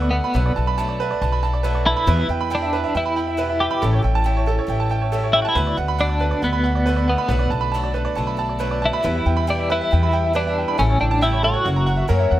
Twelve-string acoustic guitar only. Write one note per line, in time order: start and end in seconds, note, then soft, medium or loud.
0.00 0.34 D3 loud
0.00 0.33 A3 medium
0.00 0.35 B3 medium
0.00 0.35 F#4 loud
0.34 0.55 B2 loud
0.34 0.56 F#3 medium
0.34 0.56 A3 medium
0.34 0.56 D4 medium
0.34 0.55 F#4 loud
0.56 0.78 A3 medium
0.56 0.78 D4 soft
0.56 0.77 F#4 medium
0.78 0.99 B2 loud
0.78 0.99 F#3 medium
0.78 1.00 A3 loud
0.78 1.00 D4 loud
0.78 0.99 F#4 loud
1.00 1.21 A3 medium
1.00 1.22 D4 medium
1.00 1.21 F#4 medium
1.22 1.43 F#3 medium
1.22 1.43 A3 medium
1.22 1.43 D4 medium
1.22 1.42 F#4 medium
1.43 1.63 A3 medium
1.43 1.64 D4 medium
1.43 1.64 F#4 medium
1.64 2.06 B2 medium
1.64 2.07 F#3 loud
1.64 2.08 A3 loud
1.64 2.08 D4 loud
1.64 2.08 F#4 loud
2.07 2.29 E2 medium
2.07 2.29 B2 medium
2.07 2.30 E3 loud
2.07 2.30 G3 loud
2.07 2.28 B3 medium
2.07 2.27 E4 loud
2.29 2.50 E3 soft
2.29 2.50 G3 soft
2.29 2.51 B3 medium
2.29 2.51 E4 medium
2.50 2.72 E2 medium
2.50 2.73 B2 medium
2.50 2.73 E3 medium
2.50 2.73 G3 loud
2.50 2.72 B3 medium
2.50 2.71 E4 loud
2.72 2.93 E3 medium
2.72 2.94 G3 medium
2.72 2.95 B3 medium
2.72 2.94 E4 medium
2.95 3.16 E3 medium
2.95 3.17 G3 medium
2.95 3.17 B3 medium
2.95 3.16 E4 medium
3.17 3.37 E3 soft
3.17 3.37 G3 medium
3.17 3.37 B3 soft
3.17 3.38 E4 medium
3.37 3.81 E2 medium
3.37 3.81 B2 medium
3.37 3.81 E3 medium
3.37 3.82 G3 medium
3.37 3.82 B3 loud
3.37 3.82 E4 loud
3.82 4.04 A2 medium
3.82 4.04 E3 medium
3.82 4.04 G3 medium
3.82 4.03 C#4 loud
3.82 4.01 E4 medium
4.02 4.24 G3 soft
4.02 4.25 C#4 soft
4.02 4.25 E4 medium
4.24 4.46 A2 loud
4.24 4.47 E3 medium
4.24 4.47 G3 medium
4.24 4.47 C#4 loud
4.24 4.45 E4 loud
4.46 4.67 G3 medium
4.46 4.68 C#4 medium
4.46 4.68 E4 medium
4.67 4.90 E3 medium
4.67 4.90 G3 medium
4.67 4.90 C#4 medium
4.67 4.88 E4 medium
4.89 5.12 G3 medium
4.89 5.12 C#4 medium
4.89 5.12 E4 medium
5.12 5.56 A2 medium
5.12 5.55 E3 loud
5.12 5.56 G3 medium
5.12 5.56 C#4 loud
5.12 5.57 E4 loud
5.55 5.78 D3 medium
5.55 5.78 A3 medium
5.55 5.77 B3 medium
5.55 5.75 F#4 loud
5.77 5.98 A3 soft
5.77 5.99 B3 medium
5.77 5.99 F#4 medium
5.98 6.21 D3 medium
5.98 6.21 A3 medium
5.98 6.20 B3 medium
5.98 6.18 F#4 medium
6.20 6.42 A3 medium
6.20 6.43 B3 medium
6.20 6.42 F#4 medium
6.42 6.64 D3 medium
6.42 6.65 A3 medium
6.42 6.64 B3 medium
6.42 6.63 F#4 medium
6.64 6.86 A3 soft
6.64 6.87 B3 medium
6.64 6.86 F#4 medium
6.87 7.29 D3 medium
6.87 7.29 A3 medium
6.87 7.30 B3 medium
6.87 7.30 F#4 loud
7.29 7.51 B2 medium
7.29 7.52 F#3 medium
7.29 7.52 A3 medium
7.29 7.51 D4 medium
7.29 7.50 F#4 loud
7.51 7.74 A3 soft
7.51 7.74 D4 soft
7.51 7.73 F#4 medium
7.74 7.96 B2 loud
7.74 7.96 F#3 loud
7.74 7.95 A3 medium
7.74 7.94 D4 loud
7.74 7.93 F#4 loud
7.94 8.16 A3 medium
7.94 8.16 D4 medium
7.94 8.16 F#4 medium
8.15 8.38 F#3 medium
8.15 8.38 A3 medium
8.15 8.37 D4 medium
8.15 8.36 F#4 medium
8.37 8.59 A3 medium
8.37 8.59 D4 medium
8.37 8.60 F#4 medium
8.59 9.02 B2 loud
8.59 9.03 F#3 loud
8.59 9.04 A3 loud
8.59 9.04 D4 loud
8.59 9.04 F#4 loud
9.03 9.25 E2 medium
9.03 9.26 B2 medium
9.03 9.26 E3 loud
9.03 9.25 G3 loud
9.03 9.25 B3 loud
9.03 9.24 E4 medium
9.25 9.46 E3 soft
9.25 9.47 G3 medium
9.25 9.47 B3 medium
9.25 9.47 E4 medium
9.47 9.69 E2 medium
9.47 9.69 B2 loud
9.47 9.69 E3 medium
9.47 9.70 G3 loud
9.47 9.69 B3 loud
9.47 9.68 E4 loud
9.69 9.89 E3 medium
9.69 9.91 G3 medium
9.69 9.91 B3 medium
9.69 9.91 E4 medium
9.91 10.13 E3 medium
9.91 10.13 G3 medium
9.91 10.12 B3 medium
9.91 10.11 E4 medium
10.12 10.33 E3 soft
10.12 10.34 G3 medium
10.12 10.34 B3 medium
10.12 10.34 E4 medium
10.33 10.78 E2 medium
10.33 10.77 B2 medium
10.33 10.77 E3 medium
10.33 10.78 G3 medium
10.33 10.78 B3 loud
10.33 10.78 E4 medium
10.78 11.00 A2 medium
10.78 11.00 E3 medium
10.78 11.00 G3 medium
10.78 11.00 C#4 loud
10.78 10.98 E4 loud
11.00 11.22 G3 soft
11.00 11.22 C#4 soft
11.00 11.21 E4 medium
11.21 11.43 A2 medium
11.21 11.44 E3 medium
11.21 11.44 G3 loud
11.21 11.44 C#4 medium
11.21 11.43 E4 medium
11.46 11.66 G3 medium
11.46 11.66 C#4 medium
11.66 11.87 E3 medium
11.66 11.88 A#3 medium
11.66 11.87 C#4 medium
11.66 11.86 F#4 medium
11.87 12.07 E3 soft
11.87 12.08 A#3 medium
11.87 12.08 C#4 medium
11.87 12.09 F#4 medium
12.08 12.40 F#2 loud
12.08 12.40 C#3 medium
12.08 12.40 E3 loud
12.08 12.40 A#3 loud
12.08 12.40 C#4 loud
12.08 12.40 F#4 loud